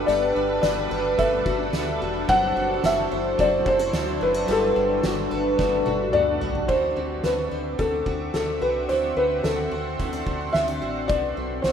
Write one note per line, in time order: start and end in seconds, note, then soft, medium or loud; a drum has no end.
0.00 2.25 G3 medium
0.00 1.19 A3 medium
0.00 0.36 D4 medium
0.00 2.25 D4 medium
0.00 0.63 F#4 medium
0.00 6.65 A4 medium
0.00 2.25 B4 medium
0.07 0.33 G1 loud
0.07 0.35 G3 medium
0.07 2.29 G3 medium
0.07 0.36 A3 medium
0.07 0.36 B3 medium
0.07 0.35 F#4 medium
0.07 0.90 B4 medium
0.07 0.33 B4 medium
0.07 0.60 D5 medium
0.07 closed hi-hat medium
0.34 0.60 G1 medium
0.34 0.62 A3 soft
0.34 1.74 D4 medium
0.34 0.63 F#4 soft
0.34 0.63 B4 medium
0.62 0.88 G1 loud
0.62 0.91 A3 medium
0.62 0.90 B3 medium
0.62 1.46 F#4 medium
0.62 0.90 F#4 medium
0.62 0.88 B4 medium
0.62 1.19 D5 medium
0.62 snare medium
0.62 closed hi-hat medium
0.62 tambourine medium
0.89 1.15 G1 loud
0.89 1.18 F#4 medium
0.89 1.18 B4 medium
0.89 2.29 B4 medium
0.93 1.18 A3 soft
1.17 1.43 G1 loud
1.17 1.45 G3 medium
1.17 1.46 A3 medium
1.17 3.38 A3 medium
1.17 1.46 B3 medium
1.17 1.45 F#4 medium
1.17 1.43 B4 medium
1.17 1.97 E5 medium
1.17 kick medium
1.17 closed hi-hat medium
1.44 1.70 G1 medium
1.44 1.71 A3 soft
1.44 1.73 F#4 soft
1.44 2.01 F#4 medium
1.44 1.73 B4 soft
1.44 kick medium
1.71 1.98 D2 medium
1.71 2.01 A3 medium
1.71 2.00 B3 medium
1.71 2.56 D4 medium
1.71 1.99 F#4 medium
1.71 snare medium
1.71 closed hi-hat medium
1.71 tambourine medium
1.75 1.97 B4 medium
1.98 2.25 E1 medium
1.98 2.27 F#4 medium
1.98 2.84 F#4 medium
1.98 2.27 B4 medium
2.03 2.28 A3 soft
2.26 2.53 F#1 loud
2.26 2.55 F#2 medium
2.26 2.55 F#3 medium
2.26 4.46 F#3 medium
2.26 4.48 F#3 medium
2.26 2.56 C4 medium
2.26 6.65 D4 medium
2.26 2.55 D4 medium
2.26 4.46 E4 medium
2.26 2.53 F#4 loud
2.26 2.54 A4 medium
2.26 4.46 C5 medium
2.26 3.10 C5 medium
2.26 2.86 F#5 loud
2.26 kick loud
2.26 closed hi-hat medium
2.54 2.81 F#1 medium
2.54 2.80 C4 soft
2.54 2.81 D4 soft
2.54 3.93 D4 medium
2.54 2.83 F#4 medium
2.54 2.83 A4 medium
2.81 3.08 F#1 loud
2.81 3.10 C4 medium
2.81 3.11 D4 medium
2.81 3.66 F#4 medium
2.81 3.10 A4 medium
2.81 snare loud
2.81 closed hi-hat medium
2.81 tambourine medium
2.85 3.08 F#4 medium
2.85 3.41 E5 medium
3.10 3.36 F#1 medium
3.10 3.37 D4 soft
3.10 3.38 F#4 soft
3.10 3.38 A4 medium
3.10 4.48 C5 medium
3.14 3.37 C4 soft
3.37 3.63 F#1 loud
3.37 3.65 F#2 medium
3.37 3.66 F#3 medium
3.37 5.34 A3 medium
3.37 3.66 C4 medium
3.37 3.66 D4 medium
3.37 3.64 F#4 loud
3.37 3.65 A4 medium
3.37 3.68 D5 medium
3.37 kick medium
3.37 closed hi-hat medium
3.65 3.91 F#1 medium
3.65 3.90 C4 soft
3.65 3.92 D4 soft
3.65 3.79 E4 medium
3.65 3.93 F#4 medium
3.65 3.93 A4 soft
3.65 4.24 C5 loud
3.65 kick loud
3.79 4.21 F#4 medium
3.92 4.18 D2 loud
3.92 4.20 C4 medium
3.92 4.76 D4 medium
3.92 4.20 D4 medium
3.92 4.19 A4 medium
3.92 snare medium
3.92 closed hi-hat medium
3.92 tambourine medium
3.96 4.17 F#4 medium
4.19 4.46 F#1 medium
4.19 4.48 D4 soft
4.19 4.34 E4 medium
4.19 4.47 F#4 soft
4.19 4.48 A4 medium
4.19 4.50 B4 medium
4.23 4.47 C4 soft
4.34 4.54 F#4 soft
4.47 4.73 G1 loud
4.47 4.75 G3 medium
4.47 6.69 G3 medium
4.47 6.67 G3 medium
4.47 4.76 A3 medium
4.47 4.76 B3 medium
4.47 6.66 F#4 medium
4.47 4.74 F#4 medium
4.47 4.76 A4 medium
4.47 6.67 B4 medium
4.47 5.30 B4 medium
4.47 closed hi-hat medium
4.51 6.11 A4 medium
4.75 5.01 G1 medium
4.75 5.03 A3 soft
4.75 6.13 D4 medium
4.75 5.03 F#4 medium
4.75 5.03 A4 soft
5.02 5.28 G1 loud
5.02 5.31 A3 medium
5.02 5.31 B3 medium
5.02 5.85 F#4 medium
5.02 5.29 F#4 medium
5.02 5.31 A4 medium
5.02 snare loud
5.02 closed hi-hat medium
5.02 tambourine medium
5.30 5.56 G1 medium
5.30 5.58 A3 medium
5.30 5.58 F#4 medium
5.30 5.59 A4 medium
5.30 6.74 B4 medium
5.57 5.83 G1 loud
5.57 5.86 G3 medium
5.57 6.96 A3 medium
5.57 5.87 A3 loud
5.57 5.86 B3 medium
5.57 5.84 F#4 loud
5.57 5.86 A4 loud
5.57 kick medium
5.57 snare medium
5.85 6.15 G1 medium
5.85 6.12 A3 medium
5.85 6.13 F#4 medium
5.85 6.41 F#4 medium
5.85 6.14 A4 medium
5.85 high tom medium
6.12 6.39 D2 medium
6.12 6.41 A3 medium
6.12 6.41 B3 medium
6.12 6.99 D4 medium
6.12 6.39 F#4 medium
6.12 6.42 A4 medium
6.12 6.70 D5 loud
6.12 mid tom medium
6.40 6.66 C2 medium
6.40 6.69 A3 soft
6.40 6.69 F#4 medium
6.40 6.99 F#4 medium
6.40 6.70 A4 medium
6.40 floor tom loud
6.55 floor tom medium
6.68 6.93 D2 medium
6.68 8.89 D3 medium
6.68 6.96 D3 medium
6.68 6.97 E3 medium
6.68 6.97 A3 medium
6.68 11.05 C4 medium
6.68 6.97 C4 medium
6.68 6.94 F#4 medium
6.68 6.96 A4 medium
6.68 7.25 C5 medium
6.68 11.05 E5 medium
6.68 11.06 F#5 medium
6.68 8.87 D6 medium
6.68 kick loud
6.68 crash medium
6.96 7.21 D2 medium
6.96 7.24 A3 soft
6.96 7.50 C4 soft
6.96 7.23 C4 soft
6.96 7.24 F#4 soft
6.96 7.25 A4 soft
7.24 7.49 D2 medium
7.24 7.52 A3 medium
7.24 7.51 C4 soft
7.24 7.78 D4 medium
7.24 7.51 F#4 medium
7.24 7.52 A4 medium
7.24 7.81 B4 medium
7.24 snare loud
7.24 closed hi-hat medium
7.51 7.76 D2 medium
7.51 7.80 A3 soft
7.51 9.15 C4 medium
7.51 7.79 F#4 soft
7.51 7.80 A4 soft
7.56 7.80 C4 soft
7.79 8.03 D2 medium
7.79 8.07 D3 medium
7.79 8.07 E3 medium
7.79 8.08 A3 medium
7.79 8.08 C4 medium
7.79 8.34 D4 medium
7.79 8.05 F#4 medium
7.79 8.32 A4 medium
7.79 8.07 A4 medium
7.79 kick medium
7.79 closed hi-hat medium
8.06 8.31 D2 medium
8.06 8.35 A3 soft
8.06 8.34 F#4 soft
8.06 8.61 F#4 medium
8.06 8.35 A4 soft
8.06 kick medium
8.11 8.33 C4 soft
8.34 8.59 D2 medium
8.34 8.63 A3 medium
8.34 8.62 C4 soft
8.34 9.43 D4 medium
8.34 8.62 A4 medium
8.34 snare medium
8.34 closed hi-hat medium
8.39 8.60 F#4 medium
8.61 8.86 C2 medium
8.61 8.90 A3 soft
8.61 8.90 C4 soft
8.61 8.89 F#4 soft
8.61 10.26 F#4 medium
8.61 8.90 A4 soft
8.61 8.87 B4 medium
8.89 9.14 D2 medium
8.89 11.08 D3 medium
8.89 9.17 D3 medium
8.89 9.17 E3 medium
8.89 9.18 A3 medium
8.89 9.18 C4 medium
8.89 9.18 A4 medium
8.89 9.17 C5 medium
8.89 11.07 C6 medium
8.89 closed hi-hat medium
8.93 9.16 F#4 medium
9.17 9.41 D2 medium
9.17 9.45 A3 soft
9.17 9.70 C4 soft
9.17 9.44 F#4 soft
9.17 9.45 A4 soft
9.17 9.45 B4 medium
9.21 9.43 C4 soft
9.43 9.69 D2 loud
9.43 9.73 A3 medium
9.43 9.72 C4 medium
9.43 9.99 D4 medium
9.43 10.57 A4 medium
9.43 9.72 A4 medium
9.43 snare medium
9.43 closed hi-hat medium
9.48 9.71 F#4 medium
9.71 9.96 D2 medium
9.71 9.98 C4 medium
9.71 10.00 F#4 medium
9.71 10.00 A4 soft
9.75 9.99 A3 soft
9.75 9.99 C4 soft
9.99 10.24 D2 loud
9.99 10.27 D3 medium
9.99 10.27 E3 medium
9.99 10.27 A3 medium
9.99 10.13 C4 medium
9.99 10.27 C4 medium
9.99 10.24 F#4 medium
9.99 10.26 A4 medium
9.99 kick medium
9.99 closed hi-hat medium
10.13 10.54 D4 medium
10.25 10.51 D2 medium
10.25 10.53 A3 soft
10.25 10.51 C4 soft
10.25 10.54 F#4 soft
10.25 10.82 F#4 medium
10.25 10.54 A4 soft
10.25 kick medium
10.53 10.79 D2 medium
10.53 10.82 A3 medium
10.53 10.81 C4 medium
10.53 10.68 C4 medium
10.53 10.80 F#4 medium
10.53 10.81 A4 medium
10.53 11.05 E5 medium
10.53 snare loud
10.53 closed hi-hat medium
10.68 11.15 D4 soft
10.81 11.06 A1 medium
10.81 11.08 A3 soft
10.81 11.09 C4 soft
10.81 11.09 F#4 medium
10.81 11.67 F#4 medium
10.81 11.09 A4 soft
11.08 11.34 B1 medium
11.08 11.36 B2 medium
11.08 11.72 B2 medium
11.08 11.37 A3 medium
11.08 11.37 D4 medium
11.08 11.35 F#4 medium
11.08 11.72 A4 medium
11.08 11.38 A4 medium
11.08 11.65 D5 loud
11.08 11.72 F#5 medium
11.08 11.72 B5 medium
11.08 11.72 D6 medium
11.08 kick loud
11.08 closed hi-hat medium
11.36 11.61 B1 medium
11.36 11.72 A3 medium
11.36 11.64 F#4 soft
11.36 11.65 A4 soft
11.40 11.64 D4 soft
11.62 11.72 B1 loud
11.62 11.72 A3 medium
11.62 11.72 C4 medium
11.62 11.72 D4 medium
11.62 11.72 C5 medium
11.62 snare loud
11.62 closed hi-hat medium
11.67 11.72 F#4 medium
11.67 11.72 A4 medium